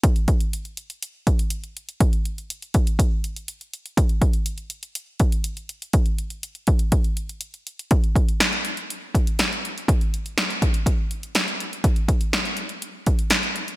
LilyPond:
\new DrumStaff \with { instrumentName = "Drums" } \drummode { \time 4/4 \tempo 4 = 122 <hh bd>16 hh16 <hh bd>16 hh16 hh16 hh16 hh16 hh16 hh8 <hh bd>16 hh16 hh16 hh16 hh16 hh16 | <hh bd>16 hh16 hh16 hh16 hh16 hh16 <hh bd>16 hh16 <hh bd>8 hh16 hh16 hh16 hh16 hh16 hh16 | <hh bd>16 hh16 <hh bd>16 hh16 hh16 hh16 hh16 hh16 hh8 <hh bd>16 hh16 hh16 hh16 hh16 hh16 | <hh bd>16 hh16 hh16 hh16 hh16 hh16 <hh bd>16 hh16 <hh bd>16 hh16 hh16 hh16 hh16 hh16 hh16 hh16 |
<hh bd>16 hh16 <hh bd>16 hh16 <hh sn>16 hh16 hh16 hh16 hh8 <hh bd>16 hh16 <hh sn>16 hh16 hh16 hh16 | <hh bd>16 hh16 hh16 hh16 <hh sn>16 hh16 <hh bd>16 hh16 <hh bd>8 hh16 hh16 <hh sn>16 hh16 hh16 hh16 | <hh bd>16 hh16 <hh bd>16 hh16 <hh sn>16 hh16 hh16 hh16 hh8 <hh bd>16 hh16 <hh sn>16 hh16 hh16 hh16 | }